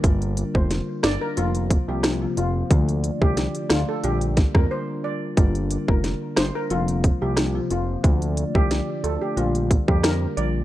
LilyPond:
<<
  \new Staff \with { instrumentName = "Steel pan" } { \time 4/4 \key g \minor \tempo 4 = 90 r8. c''16 r8 d''16 bes'16 f'16 r8 g'16 r8 f'16 r16 | r8. g'16 r8 f'16 a'16 g'16 r8 bes'16 c''16 r16 d''16 r16 | r8. bes'16 r8 c''16 bes'16 f'16 r8 g'16 r8 f'16 r16 | r8. g'16 r8 a'16 g'16 f'16 r8 g'16 bes'16 r16 d''16 r16 | }
  \new Staff \with { instrumentName = "Glass harmonica" } { \time 4/4 \key g \minor << { <g d' bes'>2 <bes c' c''>2 | <a d' d''>2 <g d' bes'>2~ | <g d' bes'>2 <bes c' c''>2 | <a d' d''>2 <g d' bes'>2 | } \\ { f'1~ | f'2 f'2~ | f'1~ | f'1 | } >> }
  \new Staff \with { instrumentName = "Marimba" } { \clef bass \time 4/4 \key g \minor <d g bes f'>16 r8 <d g bes f'>16 r4 <c f bes f'>8. <c f bes f'>16 r16 <c f bes f'>16 r8 | <d f a f'>16 r8 <d f a f'>16 r4 <d g bes f'>8. <d g bes f'>16 r4 | <d g bes f'>16 r8 <d g bes f'>16 r4 <c f bes f'>8. <c f bes f'>16 r16 <c f bes f'>16 r8 | <d f a f'>16 r8 <d f a f'>16 r4 <d g bes f'>8. <d g bes f'>8. <d g bes f'>8 | }
  \new Staff \with { instrumentName = "Analog synth bass" } { \clef bass \time 4/4 \key g \minor g,,8. f,,8 r16 g,,16 r16 f,,8. c,8. f,,8 | d,8. c,8 r16 d,16 r16 bes,,8. f,16 r4 | g,,8. f,,8 r16 g,,16 r16 f,,8. c,8. f,,8 | d,8. c,8 r16 d,16 r16 bes,,8. f,8. bes,,8 | }
  \new DrumStaff \with { instrumentName = "Drums" } \drummode { \time 4/4 <hh bd>16 hh16 hh16 bd16 <hh sn>8 <hh ss sn>8 hh16 hh16 <hh bd>8 <hh ss sn>8 hh8 | <hh bd>16 hh16 hh16 bd16 <hh sn>16 hh16 <hh ss sn>8 hh16 hh16 <hh bd sn>16 <bd ss>16 r4 | <hh bd>16 hh16 hh16 bd16 <hh sn>8 <hh ss sn>8 hh16 hh16 <hh bd>8 <hh ss sn>8 hh8 | <hh bd>16 hh16 hh16 bd16 <hh sn>8 hh8 hh16 hh16 <hh bd>16 bd16 <hh ss sn>8 hh8 | }
>>